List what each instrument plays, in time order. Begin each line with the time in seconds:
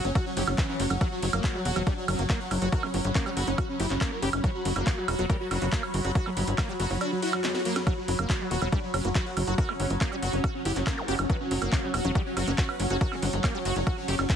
Already playing: synth texture F#3, ambient pad F#4 C#5 F#5
0.05 analog synth bass F#1, supersaw synth C#4, closed hi-hat
0.15 supersaw synth F#4, acid bass F#4, kick, closed hi-hat, high woodblock
0.26 supersaw synth C#4
0.37 analog synth bass F#1, supersaw synth C#4, acid bass G4, open hi-hat
0.47 analog synth bass F#1, supersaw synth C#4, clap, closed hi-hat, high woodblock
0.58 acid bass E3, supersaw synth C#4, kick, clap, closed hi-hat
0.69 supersaw synth C#4
0.80 analog synth bass F#1, acid bass F#3, supersaw synth C#4, open hi-hat
0.90 analog synth bass F#1, supersaw synth C#4, closed hi-hat, high woodblock
1.01 acid bass F#3, supersaw synth F#4, kick, closed hi-hat, high woodblock
1.12 supersaw synth F#3
1.22 analog synth bass F#1, supersaw synth F#3, open hi-hat
1.33 analog synth bass F#1, acid bass A#3, closed hi-hat, high woodblock
1.44 supersaw synth F#3, kick, clap, closed hi-hat
1.55 supersaw synth F#3, acid bass F#3
1.65 analog synth bass E1, acid bass F#4, open hi-hat
1.76 analog synth bass E1, supersaw synth F#3, acid bass F#3, closed hi-hat, high woodblock
1.87 acid bass G3, supersaw synth D4, ambient pad B5, kick, closed hi-hat
1.97 supersaw synth F#3
2.08 analog synth bass F#1, acid bass F#3, supersaw synth C#4, open hi-hat, high woodblock
2.19 analog synth bass F#1, supersaw synth F#3, acid bass A#3, closed hi-hat
2.30 supersaw synth F#3, acid bass A#3, kick, clap, closed hi-hat
2.40 supersaw synth F#4
2.51 analog synth bass F#1, supersaw synth F#3, open hi-hat, high woodblock
2.62 analog synth bass F#1, supersaw synth F#3, acid bass F#4, closed hi-hat
2.72 acid bass F#4, supersaw synth A#4, kick, closed hi-hat
2.83 acid bass F#3, supersaw synth C#4, high woodblock
2.94 analog synth bass G1, supersaw synth C#4, open hi-hat
3.05 analog synth bass G1, closed hi-hat
3.15 acid bass A#3, supersaw synth C#4, kick, clap, closed hi-hat
3.26 acid bass G3, supersaw synth C#4, high woodblock
3.37 analog synth bass F#1, acid bass F#4, open hi-hat
3.47 analog synth bass F#1, supersaw synth C#4, closed hi-hat
3.58 acid bass F#4, supersaw synth F#4, kick, closed hi-hat, high woodblock
3.69 supersaw synth C#4
3.80 analog synth bass F#1, supersaw synth E4, acid bass G4, open hi-hat
3.90 analog synth bass F#1, supersaw synth C#4, clap, closed hi-hat
4.01 acid bass A#3, supersaw synth C#4, kick, clap, closed hi-hat, high woodblock
4.12 supersaw synth A#4
4.22 analog synth bass F#1, supersaw synth C#4, acid bass G4, open hi-hat
4.33 analog synth bass F#1, supersaw synth C#4, closed hi-hat, high woodblock
4.44 acid bass F#3, supersaw synth C#5, kick, closed hi-hat
4.55 supersaw synth F#4
4.65 analog synth bass F#1, supersaw synth F#4, open hi-hat
4.76 analog synth bass F#1, acid bass A#3, closed hi-hat, high woodblock
4.87 supersaw synth F#4, kick, clap, closed hi-hat
4.97 acid bass F#3, supersaw synth F#4
5.08 analog synth bass E1, acid bass F#4, open hi-hat, high woodblock
5.19 analog synth bass E1, acid bass F#3, supersaw synth F#4, closed hi-hat
5.30 acid bass G3, supersaw synth A#4, kick, closed hi-hat
5.40 supersaw synth F#4
5.51 analog synth bass F#1, acid bass F#3, supersaw synth F#4, open hi-hat, high woodblock
5.62 analog synth bass F#1, acid bass A#3, supersaw synth F#4, closed hi-hat
5.72 acid bass A#3, supersaw synth F#4, kick, clap, closed hi-hat
5.83 supersaw synth C#5, high woodblock
5.94 analog synth bass F#1, supersaw synth F#4, open hi-hat
6.05 analog synth bass F#1, acid bass F#4, supersaw synth F#4, closed hi-hat
6.15 supersaw synth F#4, acid bass F#4, kick, closed hi-hat
6.26 supersaw synth F#3, acid bass F#3, high woodblock
6.37 analog synth bass G1, supersaw synth F#3, open hi-hat
6.47 analog synth bass G1, closed hi-hat
6.58 supersaw synth F#3, acid bass A#3, kick, clap, closed hi-hat, high woodblock
6.69 supersaw synth F#3, acid bass G3
6.80 analog synth bass F#1, acid bass F#4, open hi-hat
6.90 analog synth bass F#1, supersaw synth F#3, open hi-hat
7.01 supersaw synth D4, acid bass F#4, closed hi-hat, high woodblock
7.12 supersaw synth F#3
7.22 supersaw synth E4, acid bass F#4, open hi-hat
7.33 supersaw synth F#3, clap, high woodblock
7.44 supersaw synth F#3, acid bass G3, snare, clap, closed hi-hat
7.55 supersaw synth F#4, snare
7.65 supersaw synth F#3, acid bass A#3, open hi-hat
7.76 supersaw synth F#3, snare, closed hi-hat, high woodblock
7.87 acid bass F#3, synth texture F#3, supersaw synth F#4, kick, closed hi-hat, high woodblock
7.97 supersaw synth F#3
8.08 analog synth bass F#1, supersaw synth F#3, open hi-hat
8.19 analog synth bass F#1, acid bass A#3, high woodblock
8.30 supersaw synth F#3, kick, clap, closed hi-hat
8.40 supersaw synth F#3, acid bass F#3
8.51 analog synth bass E1, acid bass F#4, open hi-hat
8.62 analog synth bass E1, acid bass F#3, supersaw synth F#3, closed hi-hat, high woodblock
8.72 acid bass G3, supersaw synth D4, ambient pad F#5, kick, closed hi-hat
8.83 supersaw synth F#3
8.94 analog synth bass F#1, acid bass F#3, supersaw synth C#4, open hi-hat, high woodblock
9.05 analog synth bass F#1, supersaw synth F#3, acid bass A#3, closed hi-hat
9.15 supersaw synth F#3, acid bass F#4, kick, clap, closed hi-hat
9.26 supersaw synth F#4
9.37 analog synth bass F#1, supersaw synth F#3, open hi-hat, high woodblock
9.47 analog synth bass F#1, supersaw synth F#3, acid bass F#4, closed hi-hat
9.58 acid bass F#4, supersaw synth A#4, kick, closed hi-hat
9.69 acid bass F#3, supersaw synth C#4, high woodblock
9.80 analog synth bass G1, supersaw synth C#4, open hi-hat
9.90 analog synth bass G1, closed hi-hat
10.01 acid bass A#3, supersaw synth C#4, kick, clap, closed hi-hat
10.12 acid bass G3, supersaw synth C#4, high woodblock
10.22 analog synth bass F#1, acid bass F#4, open hi-hat
10.33 analog synth bass F#1, supersaw synth C#4, closed hi-hat
10.44 supersaw synth F#4, acid bass F#4, kick, closed hi-hat, high woodblock
10.55 supersaw synth C#4
10.65 analog synth bass F#1, supersaw synth E4, acid bass G4, open hi-hat
10.76 analog synth bass F#1, supersaw synth C#4, clap, closed hi-hat
10.87 acid bass A#3, supersaw synth C#4, kick, clap, closed hi-hat, high woodblock
10.97 supersaw synth A#4, zap
11.08 analog synth bass F#1, supersaw synth C#4, acid bass G4, open hi-hat
11.19 analog synth bass F#1, supersaw synth C#4, closed hi-hat, high woodblock
11.30 acid bass F#3, supersaw synth B4, kick, closed hi-hat
11.40 supersaw synth C#4
11.51 analog synth bass F#1, supersaw synth C#4, open hi-hat
11.62 analog synth bass F#1, acid bass A#3, closed hi-hat, high woodblock
11.72 supersaw synth C#4, kick, clap, closed hi-hat
11.83 acid bass F#3, supersaw synth C#4
11.94 analog synth bass E1, acid bass F#4, open hi-hat, high woodblock
12.05 analog synth bass E1, acid bass F#3, supersaw synth C#4, closed hi-hat
12.15 acid bass G3, supersaw synth G4, kick, closed hi-hat
12.26 supersaw synth C#4
12.37 analog synth bass F#1, acid bass F#3, supersaw synth F#4, open hi-hat, high woodblock
12.47 analog synth bass F#1, acid bass A#3, supersaw synth C#4, closed hi-hat
12.58 supersaw synth C#4, acid bass F#4, kick, clap, closed hi-hat
12.69 supersaw synth B4, high woodblock
12.80 analog synth bass F#1, supersaw synth C#4, open hi-hat
12.90 analog synth bass F#1, supersaw synth C#4, acid bass F#4, closed hi-hat
13.01 acid bass F#4, supersaw synth A#4, kick, closed hi-hat
13.12 acid bass F#3, supersaw synth C#4, high woodblock
13.22 analog synth bass G1, supersaw synth C#4, open hi-hat
13.33 analog synth bass G1, closed hi-hat
13.44 acid bass A#3, supersaw synth C#4, kick, clap, closed hi-hat, high woodblock
13.55 acid bass G3, supersaw synth C#4
13.65 analog synth bass F#1, acid bass F#4, open hi-hat
13.76 analog synth bass F#1, supersaw synth C#4, closed hi-hat
13.87 supersaw synth F#4, acid bass F#4, kick, closed hi-hat, high woodblock
13.98 supersaw synth C#4
14.08 analog synth bass F#1, supersaw synth C#4, acid bass G4, open hi-hat
14.19 analog synth bass F#1, supersaw synth C#4, clap, closed hi-hat, high woodblock
14.30 acid bass E3, supersaw synth C#4, kick, clap, closed hi-hat